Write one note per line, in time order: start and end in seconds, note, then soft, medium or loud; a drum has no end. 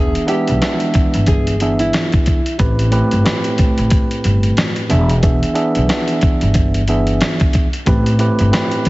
0.00 0.13 E1 loud
0.00 0.25 E3 medium
0.00 0.26 B3 medium
0.00 0.26 D4 medium
0.00 0.25 G#4 medium
0.00 0.27 G#4 medium
0.00 0.27 E5 medium
0.15 closed hi-hat medium
0.26 0.58 E3 medium
0.26 0.59 G#3 medium
0.26 0.59 B3 medium
0.26 0.59 D4 medium
0.26 1.24 G4 medium
0.26 0.59 E5 loud
0.26 closed hi-hat medium
0.47 0.59 B1 medium
0.47 closed hi-hat medium
0.61 1.54 E3 medium
0.61 1.54 G#3 medium
0.61 1.54 B3 medium
0.61 1.54 D4 medium
0.61 1.55 E5 loud
0.61 snare loud
0.61 closed hi-hat medium
0.80 closed hi-hat medium
0.94 kick medium
0.94 closed hi-hat medium
1.14 1.90 G1 medium
1.14 closed hi-hat medium
1.26 1.77 G#4 medium
1.26 kick medium
1.26 closed hi-hat medium
1.47 closed hi-hat medium
1.60 2.38 E3 loud
1.60 2.39 B3 medium
1.60 2.39 D4 medium
1.60 2.39 G#4 medium
1.60 2.39 E5 loud
1.60 closed hi-hat medium
1.79 2.55 E4 medium
1.79 closed hi-hat medium
1.93 snare loud
1.93 closed hi-hat medium
2.12 kick medium
2.12 closed hi-hat soft
2.26 kick medium
2.26 closed hi-hat medium
2.46 closed hi-hat medium
2.58 2.99 A1 loud
2.58 2.90 A2 medium
2.58 2.90 A3 medium
2.58 2.90 C4 medium
2.58 2.90 G4 medium
2.58 2.90 B4 loud
2.58 kick loud
2.58 closed hi-hat medium
2.79 closed hi-hat medium
2.91 3.23 A2 medium
2.91 3.23 A3 medium
2.91 3.23 C4 medium
2.91 3.23 G4 medium
2.91 3.23 B4 loud
2.91 closed hi-hat medium
3.11 3.23 G1 medium
3.11 closed hi-hat medium
3.24 4.89 A2 medium
3.24 4.90 A3 medium
3.24 4.90 C4 medium
3.24 4.90 G4 medium
3.24 4.90 B4 medium
3.24 snare loud
3.24 closed hi-hat medium
3.44 closed hi-hat medium
3.58 kick medium
3.58 closed hi-hat medium
3.78 3.88 A1 medium
3.78 closed hi-hat medium
3.90 kick medium
3.90 closed hi-hat medium
4.11 closed hi-hat medium
4.24 4.50 G1 medium
4.24 closed hi-hat medium
4.43 closed hi-hat medium
4.57 snare loud
4.57 closed hi-hat medium
4.76 closed hi-hat soft
4.89 5.40 E1 loud
4.89 5.12 E3 medium
4.89 5.12 B3 medium
4.89 5.13 D4 medium
4.89 5.13 G#4 medium
4.89 5.13 E5 loud
4.89 closed hi-hat medium
5.09 closed hi-hat medium
5.22 5.53 E3 medium
5.22 5.53 B3 medium
5.22 5.54 D4 medium
5.22 5.54 G#4 medium
5.22 5.54 E5 medium
5.22 kick loud
5.22 closed hi-hat medium
5.43 closed hi-hat medium
5.54 5.86 E3 medium
5.54 5.86 B3 medium
5.54 5.86 D4 medium
5.54 5.87 G#4 medium
5.54 5.87 E5 loud
5.54 closed hi-hat medium
5.75 5.86 B1 medium
5.75 closed hi-hat medium
5.88 6.81 E3 medium
5.88 6.82 B3 medium
5.88 6.82 D4 medium
5.88 6.82 G#4 medium
5.88 6.82 E5 loud
5.88 snare loud
5.88 closed hi-hat medium
6.08 closed hi-hat medium
6.21 kick medium
6.21 closed hi-hat medium
6.41 7.17 G1 medium
6.41 closed hi-hat medium
6.54 kick medium
6.54 closed hi-hat loud
6.74 closed hi-hat medium
6.88 7.66 E3 loud
6.88 7.66 B3 medium
6.88 7.66 D4 medium
6.88 7.67 G#4 medium
6.88 7.67 E5 loud
6.88 closed hi-hat medium
7.07 closed hi-hat soft
7.21 snare loud
7.21 closed hi-hat medium
7.40 kick medium
7.40 closed hi-hat soft
7.53 kick medium
7.53 closed hi-hat medium
7.73 closed hi-hat medium
7.86 8.27 A1 loud
7.86 8.17 A2 medium
7.86 8.17 A3 medium
7.86 8.18 C4 medium
7.86 8.18 G4 medium
7.86 8.18 B4 loud
7.86 kick loud
7.86 closed hi-hat medium
8.06 closed hi-hat medium
8.19 8.50 A2 medium
8.19 8.50 A3 medium
8.19 8.51 C4 medium
8.19 8.51 G4 medium
8.19 8.51 B4 loud
8.19 closed hi-hat medium
8.39 8.50 G1 medium
8.39 closed hi-hat medium
8.52 8.89 A2 medium
8.52 8.89 A3 medium
8.52 8.89 C4 medium
8.52 8.89 G4 medium
8.52 8.89 B4 loud
8.52 snare loud
8.52 closed hi-hat medium
8.71 closed hi-hat medium
8.85 closed hi-hat medium